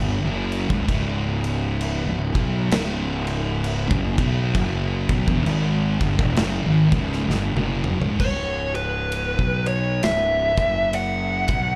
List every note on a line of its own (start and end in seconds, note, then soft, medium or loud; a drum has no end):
0.00 0.22 G1 loud
0.00 0.22 G2 medium
0.00 0.22 D3 loud
0.24 0.66 F#1 medium
0.24 0.69 F#2 medium
0.24 0.69 C#3 medium
0.24 0.69 F#3 medium
0.52 crash medium
0.70 0.87 C#1 loud
0.70 0.87 C#2 medium
0.70 0.87 G#2 loud
0.70 kick loud
0.89 2.03 C#1 loud
0.89 2.06 C#2 loud
0.89 2.06 G#2 loud
0.89 2.06 C#3 loud
0.89 kick loud
0.89 crash medium
1.44 crash medium
1.81 crash medium
2.07 2.33 C#1 medium
2.07 2.32 C#2 medium
2.07 2.33 G#2 medium
2.33 2.69 B1 medium
2.33 2.69 B2 medium
2.33 2.69 F#3 loud
2.33 2.70 B3 medium
2.33 kick loud
2.33 crash soft
2.70 3.86 C#1 loud
2.70 3.88 C#2 loud
2.70 3.88 G#2 loud
2.70 3.88 C#3 loud
2.70 snare loud
2.70 crash medium
3.27 crash medium
3.64 crash medium
3.91 4.16 F#1 loud
3.91 4.16 F#2 medium
3.91 4.16 C#3 medium
3.91 kick loud
4.18 4.52 B1 loud
4.18 4.53 B2 loud
4.18 4.53 F#3 loud
4.18 4.53 B3 loud
4.18 kick loud
4.18 crash medium
4.54 5.05 F#1 loud
4.54 5.08 F#2 loud
4.54 5.08 C#3 loud
4.54 5.08 F#3 loud
4.54 kick loud
4.54 crash medium
5.09 5.26 B1 medium
5.09 5.27 B2 medium
5.09 5.27 F#3 medium
5.09 kick loud
5.09 crash medium
5.28 5.45 E1 loud
5.28 5.45 E2 loud
5.28 5.45 B2 loud
5.28 kick loud
5.46 5.97 G#1 loud
5.46 5.99 G#2 medium
5.46 6.00 D#3 loud
5.46 6.00 G#3 loud
5.46 crash medium
6.00 6.18 G1 medium
6.00 6.18 G2 loud
6.00 6.18 D3 loud
6.00 kick loud
6.00 crash medium
6.19 6.36 E1 medium
6.19 6.37 E2 medium
6.19 6.37 B2 loud
6.19 kick loud
6.36 6.63 F#1 loud
6.36 6.63 F#2 loud
6.36 6.64 C#3 loud
6.36 snare loud
6.36 crash medium
6.64 6.90 G#1 medium
6.64 6.90 G#2 medium
6.64 6.90 D#3 loud
6.92 7.26 C#1 medium
6.92 7.28 C#2 medium
6.92 7.28 G#2 medium
6.92 7.28 C#3 medium
6.92 kick loud
6.92 crash medium
7.12 snare soft
7.28 7.54 G1 medium
7.28 7.54 G2 medium
7.28 7.55 D3 loud
7.28 snare medium
7.55 7.98 F#1 medium
7.55 8.00 F#2 medium
7.55 8.01 C#3 medium
7.55 8.01 F#3 loud
7.55 high tom medium
7.84 mid tom medium
8.01 8.19 C#1 loud
8.01 8.19 C#2 medium
8.01 8.19 G#2 loud
8.01 floor tom medium
8.20 9.35 C#1 medium
8.20 8.75 C#5 medium
8.20 kick loud
8.20 crash loud
8.75 9.67 B4 medium
8.75 ride medium
9.12 ride medium
9.39 9.99 B1 medium
9.39 kick loud
9.66 10.05 C#5 medium
9.66 ride medium
10.03 10.55 C#1 medium
10.03 10.95 E5 medium
10.03 snare loud
10.03 ride medium
10.57 11.46 F#1 medium
10.57 kick loud
10.57 ride medium
10.93 11.76 F#5 loud
10.93 ride loud
11.48 11.76 B1 loud
11.48 kick loud
11.48 ride medium